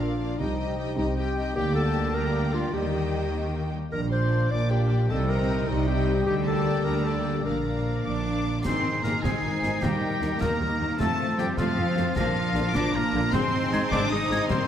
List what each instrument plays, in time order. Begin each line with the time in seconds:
Already playing: double bass section A#1, cello section A#2, harp A#2 F3 D4, french horn section D4
0.00 viola section A#3 D4, harp A#3, clarinet F4, violin section D5 F5
0.20 viola section A#3 D4, harp D4, violin section D5 F5
0.38 double bass section C2, cello section C3, harp C3, viola section G3 G4, clarinet D#4, french horn section D#4, violin section D#5 G5
0.59 viola section G3 G4, harp C4, violin section D#5 G5
0.78 viola section G3 G4, harp G3, violin section D#5 G5
0.97 double bass section C2, cello section C3, viola section G3 G4, french horn section C4, clarinet D#4, harp D#4, violin section D#5 G5
1.17 viola section G3 G4, clarinet G4, harp G4, violin section D#5 G5
1.36 viola section G3 G4, harp D#4, violin section D#5 G5
1.56 double bass section D2, harp D3, cello section D3, viola section G3 G4, french horn section A#3, clarinet G4, violin section D5 G5
1.75 harp G3, clarinet A4, violin section A5
1.95 harp D4
2.14 viola section G3 G4, french horn section A#3, harp G4, clarinet A#4, violin section D5 G5 A#5
2.35 harp D4
2.54 clarinet F4, harp G4, violin section F5
2.73 double bass section D#2, harp D#3, cello section D#3, french horn section G3, viola section A#3 G4, clarinet G4, violin section D#5 G5
2.94 harp G3
3.13 harp A#3
3.32 french horn section C4, harp G4
3.53 harp A#3, french horn section A#3
3.71 french horn section G3, harp G4
3.92 double bass section A#1, harp A#2, cello section A#2, french horn section D4, clarinet A#4, violin section A#5
4.11 harp F3, viola section D4 F4, clarinet C5, violin section D5 C6
4.31 harp A#3
4.50 double bass section A#1, cello section A#2, french horn section A#3, harp D4, clarinet D5, violin section D6
4.71 viola section D4 F4, harp F4, clarinet G4, violin section D5 G5
4.91 harp D4
5.10 double bass section C2, harp C3, cello section C3, french horn section G3, viola section C4 D#4, clarinet A4, violin section D#5 G5 A5
5.29 harp G3, viola section C4 D#4, clarinet A#4, violin section D#5 G5 A#5
5.49 harp C4
5.68 double bass section C2, cello section C3, french horn section G3, clarinet D#4, harp D#4, violin section D#5
5.88 viola section C4 D#4, clarinet G4, harp G4, violin section D#5 G5
6.08 harp D#4
6.26 double bass section D2, cello section D3, harp D3, clarinet G4, violin section G5
6.46 harp A#3, viola section A#3 G4, clarinet A4, violin section D5 G5 A5
6.67 harp D4
6.84 double bass section D2, cello section D3, harp G4, clarinet A#4, violin section A#5
7.06 viola section A#3 G4, clarinet A4, violin section D5 G5 A5, harp D5
7.27 harp G4
7.45 double bass section A#1, cello section A#2, harp A#2, viola section A#3 D4, french horn section D4, clarinet A#4, violin section D5 F5 A#5
7.65 harp F3, viola section A#3 D4, violin section D5 F5
7.86 harp A#3
8.05 double bass section A#1, cello section A#2 D4, harp D4, oboe D5, violin section D6
8.25 viola section A#3 D4, harp F4, violin section D5 F5
8.45 harp D4
8.64 double bass section G#1, harp G#2, viola section D#3 C4, cello section C4, violin section D#4 G#4 C6, clarinet D#4, oboe C5, flute C7, concert bass drum, snare, crash
8.85 harp D#3
9.03 double bass section G#1, viola section D#3, cello section A#3, french horn section C4 D#4, harp D#4, oboe A#4, violin section A#5, snare
9.22 double bass section G#1, viola section D#3 C4, cello section G#3, clarinet D#4, oboe G#4, harp G#4, violin section G#5, flute C7, concert bass drum, snare
9.43 double bass section G#1, viola section D#3 G#3, harp C5
9.62 double bass section G#1, viola section D#3, french horn section C4 D#4, harp G#4, snare
9.81 double bass section D#2, viola section D#3 A#3, harp D#3, cello section G3, clarinet D#4, oboe G4, violin section A#4 G5, flute A#6, concert bass drum, snare
10.03 harp A#3
10.20 double bass section D#2, viola section D#3, french horn section A#3 D#4, harp A#4, snare
10.41 double bass section D#2, viola section D#3 A#3, cello section A#3, clarinet D#4, harp D#4, oboe A#4, violin section A#5, flute A#6, concert bass drum, snare
10.60 double bass section D#2, viola section D#3 G3, harp D#5
10.80 double bass section D#2, viola section D#3, french horn section A#3 D#4, harp A#4
10.99 double bass section F2, viola section F3 A3, harp F3, cello section A3, clarinet C4, violin section C4 F4 A5, oboe A4, flute A6, concert bass drum, snare
11.20 harp A3
11.37 double bass section F2, viola section C3 F3, cello section G3, french horn section A3 C4, harp F4, oboe G4, violin section G5, snare
11.57 double bass section F2, cello section F3, viola section F3 A3, clarinet C4, oboe F4, harp A4, violin section F5, flute A6, concert bass drum, snare
11.77 double bass section F2, viola section F3, harp C5
11.95 double bass section F2, viola section F3, french horn section A3 C4, harp A4, snare
11.99 viola section C3
12.16 double bass section A#1, harp A#2, cello section F3, viola section F3 A#3, violin section D4 F5, clarinet D4, oboe F4, flute A#6, concert bass drum, snare
12.36 harp F3
12.54 double bass section A#1, viola section D3 F3, french horn section A#3 D4, harp D4, snare
12.74 double bass section A#1, viola section F3 A#3, clarinet D4, cello section D4, harp F4, oboe D5, violin section D6, flute A#6, concert bass drum, snare
12.93 double bass section A#1, viola section F3, cello section A#3, oboe A#4, violin section A#5
13.13 double bass section A#1, viola section D3 F3, french horn section A#3 D4, harp F4
13.32 double bass section G#1, harp G#2, viola section G#3 C4, cello section C4, violin section D#4 G#4 C6, oboe C5, concert bass drum, snare, crash
13.53 harp D#3
13.72 double bass section G#1, viola section D#3 G#3, french horn section G#3 D#4, harp D#4, clarinet D#4, flute G#6, snare
13.91 double bass section G#1, viola section G#3 C4, cello section D4, harp G#4, oboe D5, violin section D6, concert bass drum, snare
14.10 double bass section G#1, viola section G#3, cello section D#4, harp C5, oboe D#5, violin section D#6
14.30 double bass section G#1, viola section D#3 G#3, french horn section G#3 D#4, clarinet D#4, harp G#4, flute G#6, snare
14.49 double bass section D#2, harp D#3, viola section G3, cello section C4, violin section A#4 C6, oboe C5, concert bass drum, snare